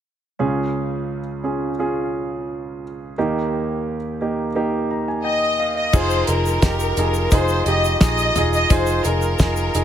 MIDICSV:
0, 0, Header, 1, 5, 480
1, 0, Start_track
1, 0, Key_signature, -4, "minor"
1, 0, Tempo, 692841
1, 274, Time_signature, 4, 2, 24, 8
1, 6819, End_track
2, 0, Start_track
2, 0, Title_t, "Violin section"
2, 0, Program_c, 0, 48
2, 3634, Note_on_c, 0, 75, 80
2, 3968, Note_off_c, 0, 75, 0
2, 3993, Note_on_c, 0, 75, 80
2, 4105, Note_off_c, 0, 75, 0
2, 4112, Note_on_c, 0, 72, 99
2, 4352, Note_off_c, 0, 72, 0
2, 4358, Note_on_c, 0, 70, 82
2, 5074, Note_off_c, 0, 70, 0
2, 5076, Note_on_c, 0, 72, 86
2, 5314, Note_off_c, 0, 72, 0
2, 5320, Note_on_c, 0, 75, 87
2, 5539, Note_off_c, 0, 75, 0
2, 5562, Note_on_c, 0, 75, 96
2, 5891, Note_off_c, 0, 75, 0
2, 5918, Note_on_c, 0, 75, 90
2, 6026, Note_off_c, 0, 75, 0
2, 6032, Note_on_c, 0, 72, 90
2, 6271, Note_off_c, 0, 72, 0
2, 6276, Note_on_c, 0, 70, 79
2, 6819, Note_off_c, 0, 70, 0
2, 6819, End_track
3, 0, Start_track
3, 0, Title_t, "Grand piano"
3, 0, Program_c, 1, 0
3, 271, Note_on_c, 1, 61, 62
3, 273, Note_on_c, 1, 49, 51
3, 274, Note_on_c, 1, 37, 51
3, 274, Note_on_c, 1, 65, 55
3, 276, Note_on_c, 1, 68, 66
3, 421, Control_c, 1, 64, 127
3, 818, Note_off_c, 1, 61, 0
3, 819, Note_off_c, 1, 65, 0
3, 820, Note_off_c, 1, 68, 0
3, 995, Note_on_c, 1, 61, 52
3, 998, Note_on_c, 1, 65, 49
3, 1001, Note_on_c, 1, 68, 58
3, 1176, Note_off_c, 1, 61, 0
3, 1177, Note_off_c, 1, 65, 0
3, 1179, Note_off_c, 1, 68, 0
3, 1240, Note_on_c, 1, 65, 59
3, 1241, Note_on_c, 1, 61, 57
3, 1246, Note_on_c, 1, 68, 67
3, 1964, Note_off_c, 1, 61, 0
3, 1964, Note_off_c, 1, 65, 0
3, 1967, Note_off_c, 1, 68, 0
3, 2165, Note_off_c, 1, 49, 0
3, 2166, Note_off_c, 1, 37, 0
3, 2201, Control_c, 1, 64, 0
3, 2204, Note_on_c, 1, 58, 66
3, 2205, Note_on_c, 1, 63, 60
3, 2206, Note_on_c, 1, 39, 55
3, 2207, Note_on_c, 1, 51, 55
3, 2208, Note_on_c, 1, 67, 68
3, 2330, Control_c, 1, 64, 127
3, 2744, Note_off_c, 1, 58, 0
3, 2745, Note_off_c, 1, 63, 0
3, 2746, Note_off_c, 1, 67, 0
3, 2916, Note_on_c, 1, 58, 55
3, 2919, Note_on_c, 1, 63, 51
3, 2922, Note_on_c, 1, 67, 58
3, 3097, Note_off_c, 1, 58, 0
3, 3098, Note_off_c, 1, 63, 0
3, 3100, Note_off_c, 1, 67, 0
3, 3154, Note_on_c, 1, 58, 65
3, 3157, Note_on_c, 1, 63, 58
3, 3161, Note_on_c, 1, 67, 72
3, 3400, Note_on_c, 1, 82, 52
3, 3508, Note_off_c, 1, 82, 0
3, 3521, Note_on_c, 1, 80, 50
3, 3629, Note_off_c, 1, 80, 0
3, 3633, Note_on_c, 1, 79, 51
3, 3856, Note_off_c, 1, 79, 0
3, 3872, Note_on_c, 1, 77, 54
3, 3880, Note_off_c, 1, 58, 0
3, 3882, Note_off_c, 1, 63, 0
3, 3884, Note_off_c, 1, 67, 0
3, 4091, Note_off_c, 1, 39, 0
3, 4092, Note_off_c, 1, 51, 0
3, 4095, Note_off_c, 1, 77, 0
3, 4109, Note_on_c, 1, 63, 83
3, 4114, Note_on_c, 1, 65, 78
3, 4116, Note_on_c, 1, 68, 93
3, 4120, Control_c, 1, 64, 0
3, 4224, Control_c, 1, 64, 127
3, 4292, Note_off_c, 1, 63, 0
3, 4295, Note_off_c, 1, 65, 0
3, 4296, Note_off_c, 1, 68, 0
3, 4354, Note_on_c, 1, 63, 63
3, 4356, Note_on_c, 1, 65, 55
3, 4361, Note_on_c, 1, 68, 69
3, 4535, Note_off_c, 1, 63, 0
3, 4536, Note_off_c, 1, 65, 0
3, 4538, Note_off_c, 1, 68, 0
3, 4593, Note_on_c, 1, 63, 65
3, 4595, Note_on_c, 1, 65, 57
3, 4596, Note_on_c, 1, 67, 71
3, 4774, Note_off_c, 1, 63, 0
3, 4775, Note_off_c, 1, 65, 0
3, 4776, Note_off_c, 1, 67, 0
3, 4835, Note_on_c, 1, 63, 59
3, 4837, Note_on_c, 1, 65, 59
3, 4842, Note_on_c, 1, 68, 69
3, 5015, Note_off_c, 1, 63, 0
3, 5016, Note_off_c, 1, 65, 0
3, 5019, Note_off_c, 1, 68, 0
3, 5074, Note_on_c, 1, 63, 85
3, 5078, Note_on_c, 1, 65, 75
3, 5080, Note_on_c, 1, 68, 92
3, 5255, Note_off_c, 1, 63, 0
3, 5256, Note_off_c, 1, 65, 0
3, 5257, Note_off_c, 1, 68, 0
3, 5313, Note_on_c, 1, 63, 65
3, 5318, Note_on_c, 1, 65, 58
3, 5319, Note_on_c, 1, 67, 73
3, 5494, Note_off_c, 1, 63, 0
3, 5497, Note_off_c, 1, 65, 0
3, 5497, Note_off_c, 1, 67, 0
3, 5555, Note_on_c, 1, 63, 64
3, 5556, Note_on_c, 1, 65, 59
3, 5558, Note_on_c, 1, 68, 74
3, 5735, Note_off_c, 1, 63, 0
3, 5735, Note_off_c, 1, 65, 0
3, 5736, Note_off_c, 1, 68, 0
3, 5798, Note_on_c, 1, 65, 64
3, 5799, Note_on_c, 1, 63, 70
3, 5805, Note_on_c, 1, 68, 75
3, 5976, Note_off_c, 1, 63, 0
3, 5976, Note_off_c, 1, 65, 0
3, 5979, Note_off_c, 1, 68, 0
3, 6034, Note_on_c, 1, 63, 90
3, 6038, Note_on_c, 1, 68, 97
3, 6039, Note_on_c, 1, 65, 82
3, 6214, Note_off_c, 1, 63, 0
3, 6216, Note_off_c, 1, 68, 0
3, 6217, Note_off_c, 1, 65, 0
3, 6274, Note_on_c, 1, 63, 64
3, 6280, Note_on_c, 1, 65, 61
3, 6282, Note_on_c, 1, 68, 70
3, 6454, Note_off_c, 1, 63, 0
3, 6457, Note_off_c, 1, 65, 0
3, 6458, Note_off_c, 1, 68, 0
3, 6508, Note_on_c, 1, 63, 62
3, 6511, Note_on_c, 1, 65, 56
3, 6514, Note_on_c, 1, 68, 73
3, 6691, Note_off_c, 1, 63, 0
3, 6692, Note_off_c, 1, 65, 0
3, 6694, Note_off_c, 1, 68, 0
3, 6753, Note_on_c, 1, 63, 60
3, 6759, Note_on_c, 1, 65, 59
3, 6760, Note_on_c, 1, 68, 74
3, 6819, Note_off_c, 1, 63, 0
3, 6819, Note_off_c, 1, 65, 0
3, 6819, Note_off_c, 1, 68, 0
3, 6819, End_track
4, 0, Start_track
4, 0, Title_t, "Picked electric bass"
4, 0, Program_c, 2, 34
4, 4112, Note_on_c, 2, 29, 83
4, 4309, Note_off_c, 2, 29, 0
4, 4352, Note_on_c, 2, 29, 82
4, 4549, Note_off_c, 2, 29, 0
4, 4590, Note_on_c, 2, 29, 94
4, 4787, Note_off_c, 2, 29, 0
4, 4830, Note_on_c, 2, 29, 84
4, 5027, Note_off_c, 2, 29, 0
4, 5073, Note_on_c, 2, 29, 90
4, 5269, Note_off_c, 2, 29, 0
4, 5307, Note_on_c, 2, 29, 75
4, 5505, Note_off_c, 2, 29, 0
4, 5551, Note_on_c, 2, 34, 84
4, 5748, Note_off_c, 2, 34, 0
4, 5788, Note_on_c, 2, 28, 84
4, 5986, Note_off_c, 2, 28, 0
4, 6031, Note_on_c, 2, 29, 90
4, 6228, Note_off_c, 2, 29, 0
4, 6271, Note_on_c, 2, 29, 87
4, 6467, Note_off_c, 2, 29, 0
4, 6509, Note_on_c, 2, 29, 86
4, 6706, Note_off_c, 2, 29, 0
4, 6752, Note_on_c, 2, 29, 81
4, 6819, Note_off_c, 2, 29, 0
4, 6819, End_track
5, 0, Start_track
5, 0, Title_t, "Drums"
5, 4110, Note_on_c, 9, 49, 81
5, 4111, Note_on_c, 9, 36, 109
5, 4112, Note_on_c, 9, 82, 66
5, 4179, Note_off_c, 9, 49, 0
5, 4181, Note_off_c, 9, 36, 0
5, 4181, Note_off_c, 9, 82, 0
5, 4229, Note_on_c, 9, 82, 46
5, 4298, Note_off_c, 9, 82, 0
5, 4346, Note_on_c, 9, 42, 63
5, 4351, Note_on_c, 9, 82, 45
5, 4415, Note_off_c, 9, 42, 0
5, 4421, Note_off_c, 9, 82, 0
5, 4473, Note_on_c, 9, 82, 45
5, 4543, Note_off_c, 9, 82, 0
5, 4589, Note_on_c, 9, 82, 55
5, 4590, Note_on_c, 9, 36, 100
5, 4590, Note_on_c, 9, 38, 90
5, 4594, Note_on_c, 9, 42, 68
5, 4658, Note_off_c, 9, 82, 0
5, 4659, Note_off_c, 9, 36, 0
5, 4660, Note_off_c, 9, 38, 0
5, 4663, Note_off_c, 9, 42, 0
5, 4708, Note_on_c, 9, 82, 50
5, 4777, Note_off_c, 9, 82, 0
5, 4828, Note_on_c, 9, 82, 45
5, 4829, Note_on_c, 9, 42, 70
5, 4898, Note_off_c, 9, 82, 0
5, 4899, Note_off_c, 9, 42, 0
5, 4946, Note_on_c, 9, 82, 47
5, 5015, Note_off_c, 9, 82, 0
5, 5064, Note_on_c, 9, 82, 64
5, 5070, Note_on_c, 9, 36, 102
5, 5071, Note_on_c, 9, 42, 68
5, 5133, Note_off_c, 9, 82, 0
5, 5139, Note_off_c, 9, 36, 0
5, 5140, Note_off_c, 9, 42, 0
5, 5183, Note_on_c, 9, 82, 43
5, 5252, Note_off_c, 9, 82, 0
5, 5307, Note_on_c, 9, 42, 50
5, 5376, Note_off_c, 9, 42, 0
5, 5434, Note_on_c, 9, 82, 46
5, 5503, Note_off_c, 9, 82, 0
5, 5546, Note_on_c, 9, 38, 90
5, 5548, Note_on_c, 9, 42, 75
5, 5551, Note_on_c, 9, 36, 103
5, 5552, Note_on_c, 9, 82, 67
5, 5616, Note_off_c, 9, 38, 0
5, 5617, Note_off_c, 9, 42, 0
5, 5620, Note_off_c, 9, 36, 0
5, 5621, Note_off_c, 9, 82, 0
5, 5667, Note_on_c, 9, 82, 48
5, 5737, Note_off_c, 9, 82, 0
5, 5790, Note_on_c, 9, 42, 70
5, 5790, Note_on_c, 9, 43, 53
5, 5790, Note_on_c, 9, 82, 47
5, 5859, Note_off_c, 9, 42, 0
5, 5859, Note_off_c, 9, 43, 0
5, 5859, Note_off_c, 9, 82, 0
5, 5912, Note_on_c, 9, 82, 42
5, 5981, Note_off_c, 9, 82, 0
5, 6028, Note_on_c, 9, 82, 63
5, 6030, Note_on_c, 9, 36, 111
5, 6030, Note_on_c, 9, 42, 81
5, 6097, Note_off_c, 9, 82, 0
5, 6099, Note_off_c, 9, 36, 0
5, 6099, Note_off_c, 9, 42, 0
5, 6142, Note_on_c, 9, 82, 49
5, 6211, Note_off_c, 9, 82, 0
5, 6265, Note_on_c, 9, 82, 49
5, 6267, Note_on_c, 9, 42, 61
5, 6334, Note_off_c, 9, 82, 0
5, 6336, Note_off_c, 9, 42, 0
5, 6385, Note_on_c, 9, 82, 42
5, 6454, Note_off_c, 9, 82, 0
5, 6504, Note_on_c, 9, 82, 57
5, 6510, Note_on_c, 9, 36, 97
5, 6510, Note_on_c, 9, 38, 92
5, 6514, Note_on_c, 9, 42, 66
5, 6573, Note_off_c, 9, 82, 0
5, 6579, Note_off_c, 9, 36, 0
5, 6580, Note_off_c, 9, 38, 0
5, 6583, Note_off_c, 9, 42, 0
5, 6626, Note_on_c, 9, 82, 51
5, 6695, Note_off_c, 9, 82, 0
5, 6750, Note_on_c, 9, 82, 47
5, 6753, Note_on_c, 9, 42, 75
5, 6819, Note_off_c, 9, 42, 0
5, 6819, Note_off_c, 9, 82, 0
5, 6819, End_track
0, 0, End_of_file